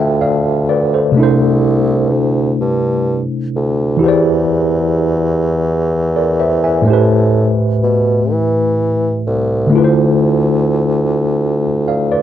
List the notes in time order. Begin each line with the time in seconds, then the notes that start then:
Already playing: D2 D3 A3 F4 C5 F5 A5
0.00 E5 G5
0.21 D5 F5
0.69 B4 D5
0.94 A4 C5
1.12 C3 A3
1.17 C2 D4 E4
1.23 C5
2.13 D2
2.61 G2
3.56 D2
3.97 E3 E4
4.01 E2 G4 G#4
4.06 C5 D5
6.16 A#4 D5
6.40 C5 E5
6.64 E5 G#5
6.82 A2 A3
6.88 A2 G4 C5
6.93 B4
7.84 B2
8.32 E3
9.27 C2
9.67 D3 A3
9.72 D2 E4 F4
9.78 B4
9.84 C5
11.88 D5 F5
12.12 B4 D5